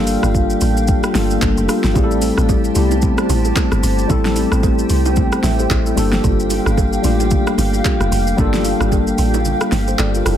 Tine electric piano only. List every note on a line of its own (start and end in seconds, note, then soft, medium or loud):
0.00 1.13 G3 loud
0.00 1.21 A#3 loud
0.00 1.15 D4 loud
0.00 1.16 F4 loud
0.00 1.98 G4 loud
0.00 0.69 A4 loud
1.13 1.59 G3 medium
1.13 1.22 A3 medium
1.13 1.60 D4 medium
1.13 1.60 F4 medium
1.13 1.61 A4 loud
1.21 1.63 A#3 medium
1.67 1.90 G3 medium
1.67 1.90 A#3 medium
1.67 1.91 D4 medium
1.67 1.91 F4 medium
1.67 1.92 A4 medium
1.94 2.61 G3 loud
1.94 2.61 A3 loud
1.94 2.62 C4 loud
1.94 2.62 E4 loud
1.94 2.04 G#4 loud
2.04 2.66 A4 loud
2.74 3.62 G3 medium
2.74 3.62 A3 medium
2.74 2.83 B3 medium
2.74 3.63 E4 medium
2.74 3.63 G4 loud
2.82 3.66 C4 medium
4.08 4.95 G3 loud
4.08 4.96 A3 loud
4.08 4.96 C4 loud
4.08 4.97 E4 loud
4.08 4.97 A4 loud
5.44 5.59 A4 medium
5.44 5.59 E5 medium
5.59 5.85 G4 medium
5.59 5.85 C5 medium
5.86 6.12 E4 medium
5.86 5.98 A4 medium
5.95 6.83 G3 loud
5.95 6.83 A#3 medium
5.95 6.84 D4 medium
5.95 6.84 F4 medium
5.95 6.85 A4 loud
7.02 7.90 G3 medium
7.02 7.11 A3 medium
7.02 7.91 D4 medium
7.02 7.91 F4 medium
7.02 7.92 G4 loud
7.10 7.94 A#3 medium
8.37 9.24 G3 loud
8.37 9.24 A#3 loud
8.37 9.25 D4 loud
8.37 9.25 F4 loud
8.37 9.26 A4 loud
9.88 9.99 G4 medium
9.88 9.99 C5 medium
9.99 10.14 A4 medium
9.99 10.14 D5 medium
10.15 10.26 F4 medium
10.15 10.25 A#4 medium
10.26 10.37 E4 medium
10.26 10.37 A4 medium